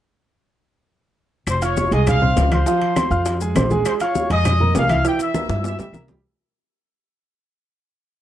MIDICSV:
0, 0, Header, 1, 5, 480
1, 0, Start_track
1, 0, Key_signature, -4, "minor"
1, 0, Tempo, 297177
1, 2378, Time_signature, 4, 2, 24, 8
1, 13269, End_track
2, 0, Start_track
2, 0, Title_t, "Trumpet section"
2, 0, Program_c, 0, 61
2, 2400, Note_on_c, 0, 72, 81
2, 2408, Note_on_c, 0, 84, 60
2, 2613, Note_off_c, 0, 72, 0
2, 2617, Note_off_c, 0, 84, 0
2, 2632, Note_on_c, 0, 73, 90
2, 2638, Note_on_c, 0, 85, 65
2, 3073, Note_off_c, 0, 73, 0
2, 3076, Note_off_c, 0, 85, 0
2, 3119, Note_on_c, 0, 75, 98
2, 3124, Note_on_c, 0, 87, 71
2, 3333, Note_off_c, 0, 75, 0
2, 3336, Note_off_c, 0, 87, 0
2, 3365, Note_on_c, 0, 77, 112
2, 4024, Note_off_c, 0, 77, 0
2, 4083, Note_on_c, 0, 72, 82
2, 4085, Note_on_c, 0, 84, 67
2, 5452, Note_off_c, 0, 72, 0
2, 5453, Note_off_c, 0, 84, 0
2, 6243, Note_on_c, 0, 72, 80
2, 6248, Note_on_c, 0, 84, 56
2, 6348, Note_off_c, 0, 72, 0
2, 6351, Note_off_c, 0, 84, 0
2, 6500, Note_on_c, 0, 73, 78
2, 6502, Note_on_c, 0, 85, 62
2, 6932, Note_off_c, 0, 73, 0
2, 6934, Note_off_c, 0, 85, 0
2, 6980, Note_on_c, 0, 87, 91
2, 6981, Note_on_c, 0, 75, 111
2, 7636, Note_off_c, 0, 75, 0
2, 7636, Note_off_c, 0, 87, 0
2, 7699, Note_on_c, 0, 77, 89
2, 7706, Note_off_c, 0, 77, 0
2, 7706, Note_on_c, 0, 77, 96
2, 8135, Note_off_c, 0, 77, 0
2, 8184, Note_on_c, 0, 67, 79
2, 8192, Note_on_c, 0, 79, 106
2, 8406, Note_off_c, 0, 67, 0
2, 8411, Note_off_c, 0, 79, 0
2, 8424, Note_on_c, 0, 88, 70
2, 8426, Note_on_c, 0, 76, 92
2, 9076, Note_off_c, 0, 88, 0
2, 9078, Note_off_c, 0, 76, 0
2, 9135, Note_on_c, 0, 88, 77
2, 9137, Note_on_c, 0, 76, 91
2, 9345, Note_off_c, 0, 88, 0
2, 9346, Note_off_c, 0, 76, 0
2, 9367, Note_on_c, 0, 76, 85
2, 9371, Note_on_c, 0, 88, 65
2, 9803, Note_off_c, 0, 76, 0
2, 9805, Note_off_c, 0, 88, 0
2, 13269, End_track
3, 0, Start_track
3, 0, Title_t, "Grand piano"
3, 0, Program_c, 1, 0
3, 2615, Note_on_c, 1, 65, 81
3, 2620, Note_on_c, 1, 77, 76
3, 2626, Note_on_c, 1, 89, 81
3, 3010, Note_off_c, 1, 65, 0
3, 3014, Note_off_c, 1, 77, 0
3, 3017, Note_off_c, 1, 89, 0
3, 3102, Note_on_c, 1, 56, 80
3, 3109, Note_on_c, 1, 68, 82
3, 3115, Note_on_c, 1, 80, 81
3, 3495, Note_off_c, 1, 56, 0
3, 3499, Note_off_c, 1, 68, 0
3, 3503, Note_off_c, 1, 80, 0
3, 3578, Note_on_c, 1, 60, 68
3, 3585, Note_on_c, 1, 72, 68
3, 3592, Note_on_c, 1, 84, 65
3, 3974, Note_off_c, 1, 60, 0
3, 3977, Note_off_c, 1, 72, 0
3, 3982, Note_off_c, 1, 84, 0
3, 4067, Note_on_c, 1, 65, 81
3, 4078, Note_on_c, 1, 77, 69
3, 4078, Note_on_c, 1, 89, 74
3, 4262, Note_off_c, 1, 65, 0
3, 4268, Note_off_c, 1, 77, 0
3, 4268, Note_off_c, 1, 89, 0
3, 4315, Note_on_c, 1, 53, 85
3, 4323, Note_on_c, 1, 65, 85
3, 4327, Note_on_c, 1, 77, 80
3, 4705, Note_off_c, 1, 53, 0
3, 4709, Note_off_c, 1, 65, 0
3, 4712, Note_off_c, 1, 77, 0
3, 4789, Note_on_c, 1, 60, 64
3, 4796, Note_on_c, 1, 72, 73
3, 4798, Note_on_c, 1, 84, 66
3, 4984, Note_off_c, 1, 60, 0
3, 4988, Note_off_c, 1, 72, 0
3, 4989, Note_off_c, 1, 84, 0
3, 5019, Note_on_c, 1, 65, 82
3, 5023, Note_on_c, 1, 77, 82
3, 5030, Note_on_c, 1, 89, 86
3, 5416, Note_off_c, 1, 65, 0
3, 5418, Note_off_c, 1, 77, 0
3, 5422, Note_off_c, 1, 89, 0
3, 5513, Note_on_c, 1, 56, 68
3, 5518, Note_on_c, 1, 68, 70
3, 5518, Note_on_c, 1, 80, 75
3, 5707, Note_off_c, 1, 56, 0
3, 5710, Note_off_c, 1, 68, 0
3, 5710, Note_off_c, 1, 80, 0
3, 5749, Note_on_c, 1, 60, 68
3, 5757, Note_on_c, 1, 84, 75
3, 5758, Note_on_c, 1, 72, 76
3, 5945, Note_off_c, 1, 60, 0
3, 5950, Note_off_c, 1, 72, 0
3, 5950, Note_off_c, 1, 84, 0
3, 5987, Note_on_c, 1, 56, 80
3, 5994, Note_on_c, 1, 68, 81
3, 6001, Note_on_c, 1, 80, 71
3, 6381, Note_off_c, 1, 56, 0
3, 6385, Note_off_c, 1, 68, 0
3, 6390, Note_off_c, 1, 80, 0
3, 6479, Note_on_c, 1, 65, 80
3, 6483, Note_on_c, 1, 77, 89
3, 6485, Note_on_c, 1, 89, 81
3, 6869, Note_off_c, 1, 65, 0
3, 6871, Note_off_c, 1, 77, 0
3, 6872, Note_off_c, 1, 89, 0
3, 6952, Note_on_c, 1, 56, 83
3, 6952, Note_on_c, 1, 68, 76
3, 6961, Note_on_c, 1, 80, 84
3, 7344, Note_off_c, 1, 56, 0
3, 7345, Note_off_c, 1, 68, 0
3, 7350, Note_off_c, 1, 80, 0
3, 7433, Note_on_c, 1, 58, 65
3, 7438, Note_on_c, 1, 70, 62
3, 7442, Note_on_c, 1, 82, 75
3, 7825, Note_off_c, 1, 58, 0
3, 7828, Note_off_c, 1, 70, 0
3, 7830, Note_off_c, 1, 82, 0
3, 7911, Note_on_c, 1, 64, 76
3, 7916, Note_on_c, 1, 76, 74
3, 7918, Note_on_c, 1, 88, 75
3, 8107, Note_off_c, 1, 64, 0
3, 8110, Note_off_c, 1, 76, 0
3, 8111, Note_off_c, 1, 88, 0
3, 8147, Note_on_c, 1, 52, 77
3, 8154, Note_on_c, 1, 64, 78
3, 8158, Note_on_c, 1, 76, 77
3, 8541, Note_off_c, 1, 52, 0
3, 8546, Note_off_c, 1, 64, 0
3, 8548, Note_off_c, 1, 76, 0
3, 8627, Note_on_c, 1, 58, 70
3, 8632, Note_on_c, 1, 70, 59
3, 8641, Note_on_c, 1, 82, 57
3, 8825, Note_off_c, 1, 58, 0
3, 8828, Note_off_c, 1, 70, 0
3, 8832, Note_off_c, 1, 82, 0
3, 8873, Note_on_c, 1, 64, 83
3, 8878, Note_on_c, 1, 76, 79
3, 8884, Note_on_c, 1, 88, 84
3, 9264, Note_off_c, 1, 64, 0
3, 9267, Note_off_c, 1, 76, 0
3, 9271, Note_off_c, 1, 88, 0
3, 9352, Note_on_c, 1, 55, 66
3, 9358, Note_on_c, 1, 67, 64
3, 9363, Note_on_c, 1, 79, 68
3, 9546, Note_off_c, 1, 55, 0
3, 9550, Note_off_c, 1, 67, 0
3, 9553, Note_off_c, 1, 79, 0
3, 9590, Note_on_c, 1, 58, 71
3, 9594, Note_on_c, 1, 70, 80
3, 9603, Note_on_c, 1, 82, 73
3, 9785, Note_off_c, 1, 58, 0
3, 9787, Note_off_c, 1, 70, 0
3, 9792, Note_off_c, 1, 82, 0
3, 9833, Note_on_c, 1, 55, 72
3, 9836, Note_on_c, 1, 67, 76
3, 9841, Note_on_c, 1, 79, 71
3, 10026, Note_off_c, 1, 55, 0
3, 10028, Note_off_c, 1, 67, 0
3, 10031, Note_off_c, 1, 79, 0
3, 13269, End_track
4, 0, Start_track
4, 0, Title_t, "Upright bass"
4, 0, Program_c, 2, 32
4, 2372, Note_on_c, 2, 29, 85
4, 3045, Note_off_c, 2, 29, 0
4, 3094, Note_on_c, 2, 36, 95
4, 3767, Note_off_c, 2, 36, 0
4, 3819, Note_on_c, 2, 37, 94
4, 4245, Note_off_c, 2, 37, 0
4, 5017, Note_on_c, 2, 41, 99
4, 5692, Note_off_c, 2, 41, 0
4, 5736, Note_on_c, 2, 34, 91
4, 6166, Note_off_c, 2, 34, 0
4, 6945, Note_on_c, 2, 41, 94
4, 7617, Note_off_c, 2, 41, 0
4, 7670, Note_on_c, 2, 36, 87
4, 8094, Note_off_c, 2, 36, 0
4, 8868, Note_on_c, 2, 43, 86
4, 9314, Note_off_c, 2, 43, 0
4, 9349, Note_on_c, 2, 37, 66
4, 9564, Note_off_c, 2, 37, 0
4, 9573, Note_on_c, 2, 36, 86
4, 10002, Note_off_c, 2, 36, 0
4, 13269, End_track
5, 0, Start_track
5, 0, Title_t, "Drums"
5, 2370, Note_on_c, 9, 75, 66
5, 2373, Note_on_c, 9, 63, 34
5, 2376, Note_on_c, 9, 70, 74
5, 2378, Note_on_c, 9, 65, 84
5, 2380, Note_on_c, 9, 60, 64
5, 2531, Note_off_c, 9, 75, 0
5, 2534, Note_off_c, 9, 63, 0
5, 2537, Note_off_c, 9, 70, 0
5, 2539, Note_off_c, 9, 65, 0
5, 2542, Note_off_c, 9, 60, 0
5, 2613, Note_on_c, 9, 70, 61
5, 2616, Note_on_c, 9, 63, 37
5, 2620, Note_on_c, 9, 65, 70
5, 2775, Note_off_c, 9, 70, 0
5, 2777, Note_off_c, 9, 63, 0
5, 2781, Note_off_c, 9, 65, 0
5, 2855, Note_on_c, 9, 70, 57
5, 2860, Note_on_c, 9, 63, 58
5, 2863, Note_on_c, 9, 66, 54
5, 2867, Note_on_c, 9, 60, 59
5, 3016, Note_off_c, 9, 70, 0
5, 3022, Note_off_c, 9, 63, 0
5, 3025, Note_off_c, 9, 66, 0
5, 3029, Note_off_c, 9, 60, 0
5, 3098, Note_on_c, 9, 70, 28
5, 3104, Note_on_c, 9, 63, 33
5, 3104, Note_on_c, 9, 65, 70
5, 3105, Note_on_c, 9, 60, 36
5, 3259, Note_off_c, 9, 70, 0
5, 3265, Note_off_c, 9, 63, 0
5, 3265, Note_off_c, 9, 65, 0
5, 3266, Note_off_c, 9, 60, 0
5, 3340, Note_on_c, 9, 70, 66
5, 3340, Note_on_c, 9, 75, 67
5, 3344, Note_on_c, 9, 60, 77
5, 3348, Note_on_c, 9, 65, 93
5, 3353, Note_on_c, 9, 63, 32
5, 3353, Note_on_c, 9, 64, 87
5, 3501, Note_off_c, 9, 70, 0
5, 3502, Note_off_c, 9, 75, 0
5, 3505, Note_off_c, 9, 60, 0
5, 3510, Note_off_c, 9, 65, 0
5, 3515, Note_off_c, 9, 63, 0
5, 3515, Note_off_c, 9, 64, 0
5, 3580, Note_on_c, 9, 63, 33
5, 3580, Note_on_c, 9, 64, 65
5, 3592, Note_on_c, 9, 60, 36
5, 3742, Note_off_c, 9, 63, 0
5, 3742, Note_off_c, 9, 64, 0
5, 3753, Note_off_c, 9, 60, 0
5, 3824, Note_on_c, 9, 60, 36
5, 3824, Note_on_c, 9, 61, 77
5, 3824, Note_on_c, 9, 70, 71
5, 3826, Note_on_c, 9, 65, 75
5, 3826, Note_on_c, 9, 66, 81
5, 3827, Note_on_c, 9, 63, 33
5, 3986, Note_off_c, 9, 60, 0
5, 3986, Note_off_c, 9, 61, 0
5, 3986, Note_off_c, 9, 70, 0
5, 3988, Note_off_c, 9, 65, 0
5, 3988, Note_off_c, 9, 66, 0
5, 3989, Note_off_c, 9, 63, 0
5, 4063, Note_on_c, 9, 60, 36
5, 4065, Note_on_c, 9, 65, 91
5, 4066, Note_on_c, 9, 70, 27
5, 4069, Note_on_c, 9, 63, 76
5, 4069, Note_on_c, 9, 75, 72
5, 4224, Note_off_c, 9, 60, 0
5, 4226, Note_off_c, 9, 65, 0
5, 4227, Note_off_c, 9, 70, 0
5, 4230, Note_off_c, 9, 75, 0
5, 4231, Note_off_c, 9, 63, 0
5, 4301, Note_on_c, 9, 60, 71
5, 4303, Note_on_c, 9, 63, 36
5, 4306, Note_on_c, 9, 70, 68
5, 4463, Note_off_c, 9, 60, 0
5, 4464, Note_off_c, 9, 63, 0
5, 4467, Note_off_c, 9, 70, 0
5, 4548, Note_on_c, 9, 65, 71
5, 4549, Note_on_c, 9, 63, 37
5, 4709, Note_off_c, 9, 65, 0
5, 4710, Note_off_c, 9, 63, 0
5, 4783, Note_on_c, 9, 75, 71
5, 4787, Note_on_c, 9, 70, 60
5, 4788, Note_on_c, 9, 60, 64
5, 4789, Note_on_c, 9, 65, 87
5, 4789, Note_on_c, 9, 66, 51
5, 4790, Note_on_c, 9, 63, 84
5, 4944, Note_off_c, 9, 75, 0
5, 4949, Note_off_c, 9, 60, 0
5, 4949, Note_off_c, 9, 70, 0
5, 4951, Note_off_c, 9, 63, 0
5, 4951, Note_off_c, 9, 65, 0
5, 4951, Note_off_c, 9, 66, 0
5, 5024, Note_on_c, 9, 70, 31
5, 5027, Note_on_c, 9, 60, 38
5, 5028, Note_on_c, 9, 63, 36
5, 5186, Note_off_c, 9, 70, 0
5, 5188, Note_off_c, 9, 60, 0
5, 5189, Note_off_c, 9, 63, 0
5, 5256, Note_on_c, 9, 70, 68
5, 5262, Note_on_c, 9, 60, 78
5, 5270, Note_on_c, 9, 63, 37
5, 5272, Note_on_c, 9, 65, 69
5, 5417, Note_off_c, 9, 70, 0
5, 5423, Note_off_c, 9, 60, 0
5, 5432, Note_off_c, 9, 63, 0
5, 5433, Note_off_c, 9, 65, 0
5, 5504, Note_on_c, 9, 70, 60
5, 5509, Note_on_c, 9, 60, 32
5, 5511, Note_on_c, 9, 63, 36
5, 5665, Note_off_c, 9, 70, 0
5, 5670, Note_off_c, 9, 60, 0
5, 5672, Note_off_c, 9, 63, 0
5, 5745, Note_on_c, 9, 65, 89
5, 5745, Note_on_c, 9, 66, 78
5, 5747, Note_on_c, 9, 75, 72
5, 5748, Note_on_c, 9, 70, 65
5, 5751, Note_on_c, 9, 60, 32
5, 5751, Note_on_c, 9, 61, 81
5, 5756, Note_on_c, 9, 63, 87
5, 5907, Note_off_c, 9, 65, 0
5, 5907, Note_off_c, 9, 66, 0
5, 5909, Note_off_c, 9, 75, 0
5, 5910, Note_off_c, 9, 70, 0
5, 5912, Note_off_c, 9, 60, 0
5, 5912, Note_off_c, 9, 61, 0
5, 5917, Note_off_c, 9, 63, 0
5, 5985, Note_on_c, 9, 70, 31
5, 5991, Note_on_c, 9, 60, 39
5, 5994, Note_on_c, 9, 63, 77
5, 6147, Note_off_c, 9, 70, 0
5, 6152, Note_off_c, 9, 60, 0
5, 6156, Note_off_c, 9, 63, 0
5, 6222, Note_on_c, 9, 70, 71
5, 6227, Note_on_c, 9, 75, 65
5, 6229, Note_on_c, 9, 63, 38
5, 6232, Note_on_c, 9, 60, 71
5, 6235, Note_on_c, 9, 65, 95
5, 6384, Note_off_c, 9, 70, 0
5, 6388, Note_off_c, 9, 75, 0
5, 6391, Note_off_c, 9, 63, 0
5, 6394, Note_off_c, 9, 60, 0
5, 6397, Note_off_c, 9, 65, 0
5, 6460, Note_on_c, 9, 70, 57
5, 6468, Note_on_c, 9, 65, 73
5, 6475, Note_on_c, 9, 63, 32
5, 6622, Note_off_c, 9, 70, 0
5, 6629, Note_off_c, 9, 65, 0
5, 6637, Note_off_c, 9, 63, 0
5, 6703, Note_on_c, 9, 70, 52
5, 6709, Note_on_c, 9, 60, 59
5, 6710, Note_on_c, 9, 63, 53
5, 6711, Note_on_c, 9, 66, 54
5, 6864, Note_off_c, 9, 70, 0
5, 6870, Note_off_c, 9, 60, 0
5, 6871, Note_off_c, 9, 63, 0
5, 6873, Note_off_c, 9, 66, 0
5, 6947, Note_on_c, 9, 63, 35
5, 6949, Note_on_c, 9, 70, 29
5, 6951, Note_on_c, 9, 60, 38
5, 6954, Note_on_c, 9, 65, 75
5, 7109, Note_off_c, 9, 63, 0
5, 7111, Note_off_c, 9, 70, 0
5, 7113, Note_off_c, 9, 60, 0
5, 7115, Note_off_c, 9, 65, 0
5, 7190, Note_on_c, 9, 70, 68
5, 7191, Note_on_c, 9, 65, 96
5, 7192, Note_on_c, 9, 60, 73
5, 7195, Note_on_c, 9, 63, 33
5, 7195, Note_on_c, 9, 64, 81
5, 7195, Note_on_c, 9, 75, 67
5, 7351, Note_off_c, 9, 70, 0
5, 7353, Note_off_c, 9, 65, 0
5, 7354, Note_off_c, 9, 60, 0
5, 7356, Note_off_c, 9, 63, 0
5, 7356, Note_off_c, 9, 64, 0
5, 7356, Note_off_c, 9, 75, 0
5, 7431, Note_on_c, 9, 60, 33
5, 7441, Note_on_c, 9, 63, 33
5, 7441, Note_on_c, 9, 64, 69
5, 7592, Note_off_c, 9, 60, 0
5, 7602, Note_off_c, 9, 63, 0
5, 7602, Note_off_c, 9, 64, 0
5, 7670, Note_on_c, 9, 65, 65
5, 7670, Note_on_c, 9, 66, 86
5, 7671, Note_on_c, 9, 60, 36
5, 7671, Note_on_c, 9, 61, 85
5, 7675, Note_on_c, 9, 63, 31
5, 7676, Note_on_c, 9, 70, 69
5, 7832, Note_off_c, 9, 60, 0
5, 7832, Note_off_c, 9, 61, 0
5, 7832, Note_off_c, 9, 65, 0
5, 7832, Note_off_c, 9, 66, 0
5, 7836, Note_off_c, 9, 63, 0
5, 7837, Note_off_c, 9, 70, 0
5, 7906, Note_on_c, 9, 65, 88
5, 7910, Note_on_c, 9, 63, 75
5, 7913, Note_on_c, 9, 75, 74
5, 7919, Note_on_c, 9, 70, 29
5, 7920, Note_on_c, 9, 60, 38
5, 8067, Note_off_c, 9, 65, 0
5, 8072, Note_off_c, 9, 63, 0
5, 8075, Note_off_c, 9, 75, 0
5, 8081, Note_off_c, 9, 60, 0
5, 8081, Note_off_c, 9, 70, 0
5, 8153, Note_on_c, 9, 60, 72
5, 8156, Note_on_c, 9, 70, 73
5, 8157, Note_on_c, 9, 63, 35
5, 8314, Note_off_c, 9, 60, 0
5, 8317, Note_off_c, 9, 70, 0
5, 8318, Note_off_c, 9, 63, 0
5, 8386, Note_on_c, 9, 65, 70
5, 8392, Note_on_c, 9, 63, 39
5, 8394, Note_on_c, 9, 70, 61
5, 8548, Note_off_c, 9, 65, 0
5, 8554, Note_off_c, 9, 63, 0
5, 8556, Note_off_c, 9, 70, 0
5, 8632, Note_on_c, 9, 63, 91
5, 8632, Note_on_c, 9, 75, 66
5, 8634, Note_on_c, 9, 60, 63
5, 8636, Note_on_c, 9, 65, 76
5, 8638, Note_on_c, 9, 70, 59
5, 8793, Note_off_c, 9, 75, 0
5, 8794, Note_off_c, 9, 63, 0
5, 8796, Note_off_c, 9, 60, 0
5, 8797, Note_off_c, 9, 65, 0
5, 8800, Note_off_c, 9, 70, 0
5, 8870, Note_on_c, 9, 63, 36
5, 8875, Note_on_c, 9, 60, 90
5, 8878, Note_on_c, 9, 70, 28
5, 8880, Note_on_c, 9, 66, 70
5, 9031, Note_off_c, 9, 63, 0
5, 9037, Note_off_c, 9, 60, 0
5, 9040, Note_off_c, 9, 70, 0
5, 9041, Note_off_c, 9, 66, 0
5, 9110, Note_on_c, 9, 60, 91
5, 9110, Note_on_c, 9, 63, 37
5, 9117, Note_on_c, 9, 66, 73
5, 9121, Note_on_c, 9, 70, 69
5, 9271, Note_off_c, 9, 63, 0
5, 9272, Note_off_c, 9, 60, 0
5, 9278, Note_off_c, 9, 66, 0
5, 9283, Note_off_c, 9, 70, 0
5, 9348, Note_on_c, 9, 66, 80
5, 9352, Note_on_c, 9, 63, 34
5, 9355, Note_on_c, 9, 61, 64
5, 9357, Note_on_c, 9, 70, 61
5, 9509, Note_off_c, 9, 66, 0
5, 9514, Note_off_c, 9, 63, 0
5, 9517, Note_off_c, 9, 61, 0
5, 9518, Note_off_c, 9, 70, 0
5, 9586, Note_on_c, 9, 75, 66
5, 9593, Note_on_c, 9, 63, 83
5, 9593, Note_on_c, 9, 70, 65
5, 9601, Note_on_c, 9, 61, 88
5, 9748, Note_off_c, 9, 75, 0
5, 9755, Note_off_c, 9, 63, 0
5, 9755, Note_off_c, 9, 70, 0
5, 9762, Note_off_c, 9, 61, 0
5, 9824, Note_on_c, 9, 66, 74
5, 9833, Note_on_c, 9, 63, 78
5, 9833, Note_on_c, 9, 70, 30
5, 9836, Note_on_c, 9, 61, 85
5, 9986, Note_off_c, 9, 66, 0
5, 9994, Note_off_c, 9, 63, 0
5, 9995, Note_off_c, 9, 70, 0
5, 9997, Note_off_c, 9, 61, 0
5, 13269, End_track
0, 0, End_of_file